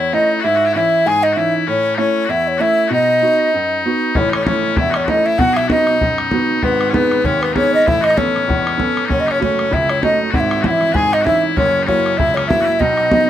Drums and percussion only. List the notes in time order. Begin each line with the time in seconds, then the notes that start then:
4.15 bodhran
4.33 bodhran
4.47 bodhran
4.77 bodhran
4.94 bodhran
5.08 bodhran
5.39 bodhran
5.57 bodhran
5.70 bodhran
5.87 bodhran
6.01 bodhran
6.18 bodhran
6.31 bodhran
6.63 bodhran
6.81 bodhran
6.94 bodhran
7.11 bodhran
7.24 bodhran
7.43 bodhran
7.56 bodhran
7.88 bodhran
8.04 bodhran
8.10 bodhran
8.18 bodhran
8.36 bodhran
8.50 bodhran
8.67 bodhran
8.80 bodhran
8.97 bodhran
9.11 bodhran
9.28 bodhran
9.42 bodhran
9.59 bodhran
9.73 bodhran
9.89 bodhran
10.03 bodhran
10.34 bodhran
10.51 bodhran
10.64 bodhran
10.81 bodhran
10.95 bodhran
11.13 bodhran
11.27 bodhran
11.57 bodhran
11.88 bodhran
12.06 bodhran
12.19 bodhran
12.37 bodhran
12.50 bodhran
12.81 bodhran
12.97 bodhran
13.12 bodhran